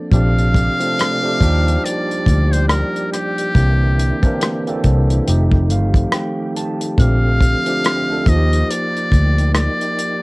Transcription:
Already playing: tine electric piano F3 A#3 C4 D4 A4
0.11 fingered electric bass A#1, tonewheel organ C3 A3 G4 D5, tine electric piano F3 A3 C4 D4 G4, muted trumpet F5, kick, closed hi-hat
0.38 closed hi-hat
0.54 kick, closed hi-hat
0.80 tine electric piano F3 A3 C4 D4 A4, closed hi-hat
0.99 cross-stick, closed hi-hat
1.22 tine electric piano F3 A3 C4 D4 G4
1.40 fingered electric bass D#2, tine electric piano F3 A#3 D4 D#4 G4, tonewheel organ G3, kick, closed hi-hat
1.68 closed hi-hat
1.85 muted trumpet D5, closed hi-hat
2.11 closed hi-hat
2.26 fingered electric bass D2, kick, closed hi-hat
2.52 muted trumpet C5, closed hi-hat
2.68 muted trumpet A#4, cross-stick, closed hi-hat
2.96 closed hi-hat
3.13 muted trumpet G4, cross-stick, closed hi-hat
3.38 closed hi-hat
3.55 fingered electric bass C2, tonewheel organ D3 A#3 E4, tine electric piano E3 A#3 C4 D4 G4, kick, closed hi-hat
3.99 closed hi-hat
4.23 tine electric piano E3 A#3 C4 D4 A#4, kick, closed hi-hat
4.41 cross-stick, closed hi-hat
4.67 tine electric piano E3 A#3 C4 D4 A4, closed hi-hat
4.84 fingered electric bass C2, kick, closed hi-hat
5.10 closed hi-hat
5.26 fingered electric bass F1, tonewheel organ D#3 A3 G4, tine electric piano F3 A3 C4 D#4 G4, closed hi-hat
5.52 kick
5.70 fingered electric bass G1, tine electric piano F5, closed hi-hat
5.94 kick, closed hi-hat
6.12 tine electric piano G5, cross-stick, closed hi-hat
6.56 tine electric piano A5, closed hi-hat
6.81 closed hi-hat
6.98 fingered electric bass A#1, tonewheel organ D3 C4, tine electric piano F3 A3 C4 D4 G4, muted trumpet F5, kick, closed hi-hat
7.41 kick, closed hi-hat
7.66 tine electric piano F3 A3 C4 D4 G4, closed hi-hat
7.84 cross-stick, closed hi-hat
8.09 tine electric piano F3 A3 C4 D4 A4
8.26 fingered electric bass D#2, tine electric piano F3 A#3 D#4 F4, tonewheel organ A#3 D#4, muted trumpet D#5, kick, closed hi-hat
8.36 tine electric piano G4
8.53 closed hi-hat
8.70 muted trumpet D5, closed hi-hat
8.96 closed hi-hat
9.12 fingered electric bass D2, kick, closed hi-hat
9.38 closed hi-hat
9.54 muted trumpet D5, cross-stick, closed hi-hat
9.81 closed hi-hat
9.98 closed hi-hat

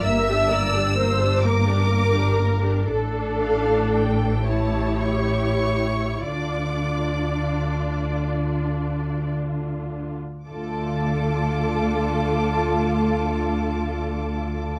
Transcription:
0.03 double bass section G1, cello section G2, viola section A#3 A#4, violin section E5 E6
0.27 viola section D4 G4
0.49 viola section A#3 A#4, violin section D5
0.74 viola section D4 G4
0.96 viola section A#3 A#4, violin section C5
1.19 viola section D4 G4
1.44 viola section A#3 A#4, violin section A#4 D6
1.66 viola section D4 G4
1.90 viola section A#3 A#4
2.14 viola section D4 G4
2.39 viola section A#3 A#4
2.62 viola section D4 G4
2.88 double bass section A1, cello section A2, viola section D4 A4, violin section A4
3.40 violin section F5
3.93 violin section G5
4.47 viola section E4 G4, violin section C#5 A5
5.04 violin section C#6
6.25 double bass section D2, cello section D3, viola section D4 F4, violin section D5 D6
10.47 double bass section D2, cello section D3, viola section A3 F4, violin section A4 A5 D6

